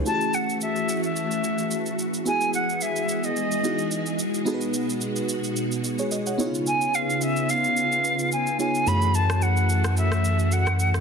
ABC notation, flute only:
X:1
M:4/4
L:1/16
Q:"Swing 16ths" 1/4=109
K:F#dor
V:1 name="Flute"
a2 f2 e3 e6- e z2 | g2 f2 e3 d6- d z2 | z16 | g2 ^e2 =e2 ^e6 g2 g2 |
b2 a2 f4 e4 f3 z |]